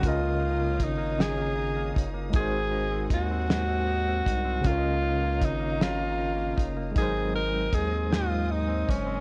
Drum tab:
HH |x-xx-x|x-xx-x|x-xx-x|x-xx-x|
SD |---o--|---o--|---o--|---o--|
BD |o-o--o|o-o--o|o-o--o|o-o--o|